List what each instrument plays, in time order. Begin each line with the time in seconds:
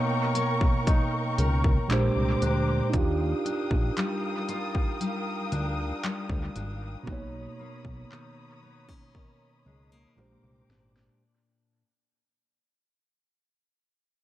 Already playing: tine electric piano B2 A#3 D#4 C#5 F5 A#5, steel-string acoustic guitar B3 D#4 A#4, string section A#4 G5 A#5 C#6
0.35 steel-string acoustic guitar C#5, closed hi-hat
0.61 kick
0.87 steel-string acoustic guitar D#4, kick, closed hi-hat
1.38 analog synth bass C#2, steel-string acoustic guitar A#4, closed hi-hat
1.64 kick
1.88 analog synth bass A#1, tine electric piano A#2 G#3 D4 G4, steel-string acoustic guitar A#2, string section C5 G5 A#5 D6, clap, closed hi-hat
1.93 tine electric piano C5
2.16 analog synth bass C2
2.42 analog synth bass D2, steel-string acoustic guitar D4, closed hi-hat
2.90 analog synth bass D#2, tine electric piano D4 D#4, kick, closed hi-hat
2.94 tine electric piano F4, string section A#4 F5 D#6
2.99 tine electric piano G4
3.45 steel-string acoustic guitar D4, closed hi-hat
3.71 analog synth bass A#1, kick
3.97 steel-string acoustic guitar G3, clap, closed hi-hat
4.49 steel-string acoustic guitar F4, closed hi-hat
4.75 kick
5.00 steel-string acoustic guitar G3, closed hi-hat
5.52 analog synth bass D2, steel-string acoustic guitar D4, closed hi-hat
6.04 steel-string acoustic guitar G3, clap, closed hi-hat
6.29 analog synth bass D2, kick
6.55 analog synth bass G#1, steel-string acoustic guitar D4, closed hi-hat
7.03 analog synth bass B1, tine electric piano B2 A#3, steel-string acoustic guitar B2, kick
7.07 tine electric piano D#4, string section C#5 A#5 B5 D#6
7.12 tine electric piano C#5
7.59 steel-string acoustic guitar A#3
7.85 analog synth bass B1, kick
8.11 steel-string acoustic guitar D#3, clap
8.62 steel-string acoustic guitar B3
8.88 steel-string acoustic guitar C#4, kick
9.14 steel-string acoustic guitar D#3, kick
9.66 analog synth bass C#2, steel-string acoustic guitar G#3
9.92 steel-string acoustic guitar A#3
10.16 analog synth bass A#1, tine electric piano A#2 G#3 D4 G4, steel-string acoustic guitar A#2, string section C5 G5 A#5 D6
10.21 tine electric piano C5
10.44 analog synth bass C2
10.69 analog synth bass G#1, steel-string acoustic guitar D4, snare
10.97 snare